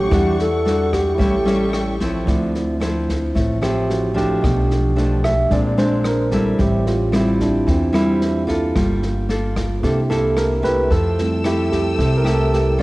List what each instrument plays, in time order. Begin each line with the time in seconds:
Already playing: alto flute G4, tine electric piano A4 C#5 F#5, string section F#5 C#6
0.09 upright bass E2, nylon-string guitar E3 G3 D4 F#4, string section G3, tine electric piano E4, kick, cross-stick, snare
0.13 tine electric piano D5 F#5
0.39 alto flute A4, snare
0.65 nylon-string guitar G3 D4 F#4, snare
0.92 alto flute G4, kick, cross-stick, snare
1.15 nylon-string guitar A2 G3 C#4, tine electric piano E4 A4 C#5, string section A4 G5 C#6
1.19 upright bass A1, nylon-string guitar E4, tine electric piano G5, kick, snare
1.45 nylon-string guitar G3 C#4 E4, snare
1.73 cross-stick, snare
2.00 nylon-string guitar F3 C4 E4, kick, snare
2.25 upright bass D2, nylon-string guitar D3, tine electric piano F3 C4 E4, kick, snare
2.55 snare
2.80 nylon-string guitar F3 C4 E4, cross-stick, snare
3.08 kick, snare
3.35 upright bass A1, nylon-string guitar A2, kick, snare
3.61 nylon-string guitar F3 C4 E4, tine electric piano G4, cross-stick, snare
3.90 tine electric piano F#4, snare
4.14 nylon-string guitar F3 A3 D4, tine electric piano G4, kick, snare
4.41 upright bass B1, nylon-string guitar B2, tine electric piano F3 A3 D4, kick, cross-stick, snare
4.71 snare
4.96 nylon-string guitar F3 A3 D4, snare
5.24 tine electric piano E5, kick, cross-stick, snare
5.50 upright bass A#1, nylon-string guitar A#2 G#3 C4 D4, tine electric piano G#3 C4 D4 D5, kick, snare
5.77 nylon-string guitar G#3 C4 D4, tine electric piano C5, snare
6.04 tine electric piano A#4, cross-stick, snare
6.31 nylon-string guitar G3 C4 E4, tine electric piano A4, kick, snare
6.59 upright bass A1, nylon-string guitar A2, tine electric piano G3 C4 E4 G4, kick, snare
6.86 tine electric piano F4, snare
7.12 nylon-string guitar G3 C4 E4, tine electric piano E4, cross-stick, snare
7.40 tine electric piano D4, kick, snare
7.67 upright bass E2, nylon-string guitar E3, tine electric piano C4, kick, snare
7.93 nylon-string guitar G3 C4 E4, tine electric piano E4, cross-stick, snare
8.21 snare
8.47 nylon-string guitar A#3 F4 A4, kick, snare
8.76 upright bass G1, nylon-string guitar G3, tine electric piano A#3 F4, kick, cross-stick, snare
9.03 snare
9.29 nylon-string guitar A#3 F4 A4, snare
9.56 kick, cross-stick, snare
9.83 upright bass C2, nylon-string guitar C3 A#3 E4 A4, tine electric piano A#3 D4 E4 G4, kick, snare
10.10 nylon-string guitar A#3 E4 A4, tine electric piano A4, snare
10.37 tine electric piano A#4, cross-stick, snare
10.62 nylon-string guitar A3 E4 G4, tine electric piano B4, kick, snare
10.88 upright bass F2, nylon-string guitar F3, string section A4 G5 E6, tine electric piano A4, kick, snare
11.18 tine electric piano G3 A3 C4 E4, snare
11.44 nylon-string guitar A3 E4 G4, tine electric piano E4, cross-stick, snare
11.72 tine electric piano G4, kick, snare
11.98 upright bass C2, nylon-string guitar C3, tine electric piano A4, kick, snare
12.17 tine electric piano A#4
12.24 nylon-string guitar A3 E4 G4, cross-stick, snare
12.35 tine electric piano A4
12.53 tine electric piano G4, snare
12.78 nylon-string guitar G3 C#4 F4